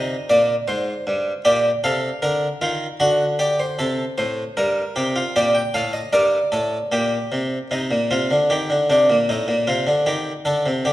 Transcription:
Already playing: C3 D#4 D#5
0.30 A#2 D5
0.68 G#2 C5
1.07 G2
1.45 A#2 G4 D5
1.84 C3 A4 F5
2.22 D3 A#4
2.61 D#3 F4
3.00 D3 F#4 F#5
3.39 G4 D5
3.60 C5
3.79 C3 A4
4.18 A2 C5
4.57 G2 A#4
4.96 C3 G4
5.16 F4
5.36 A#2 G4 D5
5.55 G5
5.74 A2 A4 F5
5.93 D#5
6.13 G2 A#4 D5
6.52 A2 A4
6.92 A#2 G4
7.32 C3
7.71 C3 D#4
7.91 A#2
8.11 C3 F4
8.31 D3
8.50 D#3 G4
8.70 D3
8.90 C3 D4
9.10 A#2
9.29 A2 D#4
9.48 A#2
9.67 C3 F4
9.87 D3
10.06 D#3 G4
10.45 D3 A4
10.66 C3
10.85 D3 G4

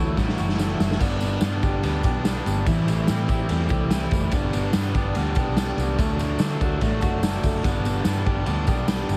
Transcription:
Already playing: D2 E3 A3 E4 F#4
0.00 F#3
0.16 A1 D3 F#3 A3 E4, kick, snare, tambourine
0.29 snare
0.37 F#1 F#3 A3 E4 F#4, tambourine
0.49 snare
0.57 D3 F#3 A3 E4, snare, tambourine
0.79 F#1 A3, snare, tambourine
0.91 snare
0.99 G1 G2 D3 G3 B3 D4, kick, crash, tambourine
1.21 B3, ride, tambourine
1.41 G2 D3 G3 B3 D4, snare, ride, tambourine
1.46 D4
1.62 G1 G3 B3 D4 G4, kick, ride, tambourine
1.83 D2 D3 G3 B3 D4, ride, tambourine
2.03 B1 B3 D4 G4, kick, ride, tambourine
2.07 G3
2.24 D3 G3 B3 D4, snare, ride, tambourine
2.46 G1 B3, ride, tambourine
2.66 A1 A2 E3 G3 C4 E4, kick, ride, tambourine
2.88 A3, ride, tambourine
3.07 A2 E3 G3 C4 E4, snare, ride, tambourine
3.28 A1 C4 E4 G4, kick, ride, tambourine
3.33 G3
3.49 E2 E3 G3 A3 C4 E4, ride, tambourine
3.69 C2 C4 E4 G4, kick, ride, tambourine
3.73 G3
3.90 E3 G3 C4 E4, snare, ride, tambourine
4.11 F#1 A3, kick, ride, tambourine
4.31 G1 G2 D3 G3 B3 D4, kick, ride, tambourine
4.53 B3, ride, tambourine
4.73 G2 D3 G3 B3 D4, snare, ride, tambourine
4.77 D4
4.94 G1 G3 B3 D4 G4, kick, ride, tambourine
5.15 D2 D3 G3 B3 D4, ride, tambourine
5.35 B1 B3 D4 G4, kick, ride, tambourine
5.40 G3
5.56 D3 G3 B3 C4 D4, snare, ride, tambourine
5.68 D4
5.77 C2 B3, ride, tambourine
5.98 D2 D3 F#3 A3 D4, kick, ride, tambourine
6.19 A3, ride, tambourine
6.39 D3 F#3 A3 D4, snare, ride, tambourine
6.60 D2 F#3 A3 D4 F#4, kick, ride, tambourine
6.80 A1 D3 F#3 A3 D4, kick, ride, tambourine
7.01 F#1 F#3 A3 D4 F#4, kick, ride, tambourine
7.22 D3 F#3 A3 D4, snare, ride, tambourine
7.43 F#1 A3, kick, open hi-hat, ride, tambourine
7.64 G1 G2 D3 G3 B3 D4, kick, hi-hat pedal, ride, tambourine
7.85 B3, ride, tambourine
8.05 G2 D3 G3 B3 D4, snare, ride, tambourine
8.26 G1 G3 B3 D4 G4, kick, ride
8.46 D2 D3 G3 B3 D4, ride, tambourine
8.67 B1 G3 B3 D4 G4, kick, ride, tambourine
8.87 D3 G3 B3 D4, snare, ride, tambourine
9.09 G1 B3, ride, tambourine

